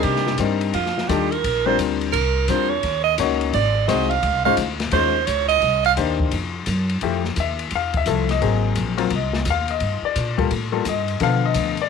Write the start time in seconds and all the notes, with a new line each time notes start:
Already playing: G3 C4 D4 D#4 A#4
0.03 C3 G4, kick, ride
0.16 snare
0.26 snare
0.38 G2 G3 C4 D4 D#4 A#4, kick, hi-hat pedal, ride
0.61 ride
0.74 F2 F4, kick, ride
0.86 snare
0.98 snare
1.09 D#2 G3 D4 D#4 F4 G4 A4, kick, hi-hat pedal, ride
1.31 A#4, ride
1.44 A#1, kick, ride
1.66 G3 C4 D4 F4 A#4 C5
1.79 D2, kick, hi-hat pedal, ride
2.01 ride
2.12 C2 A#4, kick, ride
2.48 E2 G3 C4 D4 F4 A#4 C5, kick, hi-hat pedal, ride
2.70 C#5
2.83 D#2, kick, ride
3.04 D#5
3.18 C#2 A#3 C#4 D#4 F#4 C#5, kick, hi-hat pedal, ride
3.41 ride
3.53 G#1 D5, kick, ride
3.88 C2 G#3 C4 D#4 F#4 C5 D#5, kick, hi-hat pedal, ride
4.10 F5, ride
4.23 C#2, kick, ride
4.32 C2
4.44 G#1 G#3 C#4 D#4 F4 C5 F5
4.57 D2, kick, hi-hat pedal, ride
4.80 snare, ride
4.91 D#2 G#3 C#4 D#4 F4 C5, kick, ride
5.27 C#2 C#5, kick, hi-hat pedal, ride
5.49 D#5, ride
5.62 C2, kick, ride
5.84 F5, ride
5.97 D#2 A#3 D4 D#4 G4 C5, kick, hi-hat pedal, ride
6.20 kick
6.31 F2, kick, ride
6.66 F#2, kick, hi-hat pedal, ride
6.89 ride
7.01 F2 F3 A3 E4 G4, kick, ride
7.24 snare
7.36 D#2 E5, kick, hi-hat pedal, ride
7.59 ride
7.71 E2, kick, ride
7.76 F5
7.94 E5, kick, ride
8.06 C2 F3 A3 E4 A4, kick, hi-hat pedal, ride
8.29 D#5, snare, ride
8.41 G#1 F#3 A#3 C4 G#4, kick, ride
8.75 A#1, kick, hi-hat pedal, ride
8.97 F#3 A#3 C4 F4, ride
9.10 C2, kick, ride
9.15 D#5
9.33 snare
9.45 D#2, kick, hi-hat pedal, ride
9.50 F5
9.68 D#5, ride
9.80 G2, kick, ride
10.02 D5, muted upright bass stroke
10.16 A#2, kick, hi-hat pedal, ride
10.38 G3 A#3 F4 A4, kick, ride
10.51 A2, kick, ride
10.72 G3 A#3 F4 A4
10.85 G2 D#5, kick, hi-hat pedal, ride
11.08 ride
11.20 B2 D3 F3 B3 A4 F5, kick, ride
11.45 D#5
11.54 D2, kick, hi-hat pedal, ride
11.77 ride
11.82 D5